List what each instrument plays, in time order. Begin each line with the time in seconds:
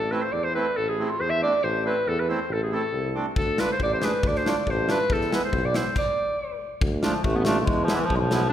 Already playing: tuba A1, clarinet A4
0.11 accordion A3 C4 E4, clarinet B4
0.22 clarinet C5
0.32 tuba E2, clarinet D5
0.44 clarinet C5
0.55 accordion A3 C4 E4, clarinet B4
0.77 tuba A1, clarinet A4
0.88 clarinet G#4
0.99 accordion A3 C4 E4
1.09 clarinet F4
1.20 tuba E2, clarinet C5
1.30 clarinet E5
1.42 accordion A3 C4 D4, clarinet D5
1.63 tuba A1, clarinet C5
1.85 accordion A3 C4 E4, clarinet B4
2.07 tuba E2, clarinet A4
2.20 clarinet B4
2.29 accordion A3 C4 E4, clarinet C5
2.49 tuba A1, clarinet A4
2.63 clarinet G#4
2.72 accordion A3 C4 E4, clarinet A4
2.93 tuba C2
3.15 accordion A3 C4 D4
3.36 tuba D2, clarinet A4, kick
3.58 accordion A3 D4 F4, clarinet B4, snare
3.72 clarinet C5
3.80 tuba A1, clarinet D5, kick
3.94 clarinet C5
4.00 accordion A3 D4 G#4, clarinet C5, snare
4.05 clarinet B4
4.23 tuba D2, kick
4.28 clarinet D5
4.35 clarinet C5, snare
4.45 accordion A3 D4 F4, snare
4.49 clarinet D5
4.67 tuba A1, clarinet C5, kick
4.88 accordion A3 D4 F4, clarinet B4, snare
5.10 tuba E2, clarinet A4, kick
5.21 snare
5.31 accordion G#3 B3 E4, snare
5.35 clarinet B4
5.45 clarinet C5
5.53 tuba B1, kick
5.65 clarinet D5
5.73 accordion G#3 B3 E4, clarinet C5, snare
5.96 clarinet D5, kick, crash
6.81 tuba D2, kick
7.03 clarinet F3, accordion A3 D4 F4, snare
7.24 tuba A1, clarinet A3, kick
7.35 clarinet B3
7.39 clarinet B3
7.44 clarinet A3, accordion A3 D4 F4, snare
7.60 clarinet A3
7.65 tuba E2, clarinet G#3, kick
7.84 clarinet F3
7.88 accordion G#3 B3 E4, snare
7.95 clarinet E3
8.05 clarinet F3
8.10 tuba B1, kick
8.16 clarinet F3 G#3
8.31 accordion G#3 B3 E4, snare
8.49 clarinet D4